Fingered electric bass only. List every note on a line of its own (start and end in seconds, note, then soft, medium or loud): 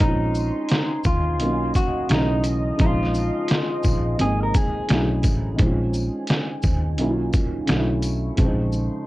0.01 0.50 A#1 loud
1.05 1.41 D#2 medium
1.41 1.71 B1 loud
2.10 2.71 B1 loud
2.80 3.29 A#1 loud
3.85 4.15 A#1 loud
4.21 4.50 G#1 medium
4.91 5.24 B1 loud
5.24 5.55 A1 medium
5.59 6.08 A#1 medium
6.64 7.00 D#2 loud
7.00 7.29 B1 loud
7.70 8.30 B1 loud
8.39 8.88 A#1 loud